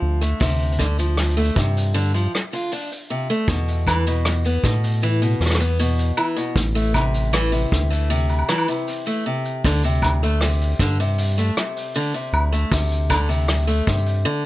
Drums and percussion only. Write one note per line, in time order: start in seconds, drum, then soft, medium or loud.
0.22 shaker medium
0.40 kick loud
0.40 open hi-hat medium
0.40 shaker medium
0.59 open hi-hat soft
0.59 shaker soft
0.65 open hi-hat soft
0.72 open hi-hat soft
0.79 kick soft
0.97 open hi-hat soft
0.97 shaker medium
1.17 cross-stick medium
1.17 open hi-hat medium
1.17 shaker soft
1.32 shaker soft
1.37 open hi-hat soft
1.37 shaker soft
1.45 shaker soft
1.56 kick loud
1.76 open hi-hat medium
1.76 shaker medium
1.95 open hi-hat medium
1.95 shaker medium
2.15 open hi-hat soft
2.15 shaker medium
2.35 cross-stick medium
2.53 open hi-hat soft
2.53 shaker medium
2.71 open hi-hat medium
2.71 shaker medium
2.91 open hi-hat soft
2.91 shaker soft
3.31 shaker medium
3.48 kick loud
3.48 open hi-hat medium
3.48 shaker medium
3.68 open hi-hat soft
3.68 shaker soft
3.87 kick medium
3.87 low woodblock medium
4.06 open hi-hat soft
4.06 shaker medium
4.25 cross-stick medium
4.25 open hi-hat medium
4.25 shaker medium
4.44 open hi-hat soft
4.44 shaker soft
4.64 kick medium
4.84 open hi-hat medium
4.84 shaker medium
5.02 open hi-hat medium
5.02 shaker medium
5.22 open hi-hat soft
5.22 shaker soft
5.41 cross-stick soft
5.46 cross-stick soft
5.50 cross-stick medium
5.55 cross-stick medium
5.60 open hi-hat soft
5.60 shaker medium
5.79 open hi-hat medium
5.79 shaker medium
5.99 open hi-hat soft
5.99 shaker soft
6.17 low woodblock medium
6.38 shaker medium
6.56 kick loud
6.56 open hi-hat medium
6.56 shaker medium
6.75 open hi-hat medium
6.75 shaker soft
6.94 kick medium
6.94 low woodblock medium
7.14 open hi-hat soft
7.14 shaker medium
7.33 cross-stick medium
7.33 open hi-hat medium
7.33 shaker medium
7.52 open hi-hat soft
7.52 shaker soft
7.72 kick loud
7.91 open hi-hat medium
7.91 shaker medium
8.10 open hi-hat medium
8.10 shaker medium
8.29 open hi-hat soft
8.29 low woodblock soft
8.39 low woodblock soft
8.49 cross-stick medium
8.49 low woodblock soft
8.58 low woodblock medium
8.68 open hi-hat soft
8.68 shaker medium
8.88 open hi-hat medium
8.88 shaker medium
9.05 open hi-hat soft
9.05 shaker soft
9.45 shaker medium
9.64 kick loud
9.64 open hi-hat medium
9.64 shaker medium
9.83 open hi-hat medium
9.83 shaker soft
10.02 kick soft
10.02 low woodblock medium
10.23 open hi-hat medium
10.23 shaker medium
10.41 cross-stick medium
10.41 open hi-hat medium
10.41 shaker medium
10.61 open hi-hat soft
10.61 shaker soft
10.71 open hi-hat soft
10.79 kick medium
10.79 open hi-hat soft
10.90 open hi-hat soft
10.99 open hi-hat medium
10.99 shaker medium
11.18 open hi-hat medium
11.18 shaker medium
11.38 open hi-hat soft
11.38 shaker soft
11.57 cross-stick medium
11.76 open hi-hat medium
11.76 shaker medium
11.94 open hi-hat medium
11.94 shaker soft
12.14 open hi-hat soft
12.14 shaker soft
12.34 low woodblock medium
12.54 shaker medium
12.72 kick loud
12.72 open hi-hat medium
12.72 shaker medium
12.92 shaker medium
13.10 kick medium
13.10 low woodblock medium
13.29 open hi-hat soft
13.29 shaker medium
13.48 cross-stick medium
13.48 open hi-hat medium
13.48 shaker medium
13.68 open hi-hat soft
13.68 shaker soft
13.78 shaker soft
13.87 kick loud
13.87 shaker soft
13.98 shaker soft
14.06 open hi-hat medium
14.06 shaker medium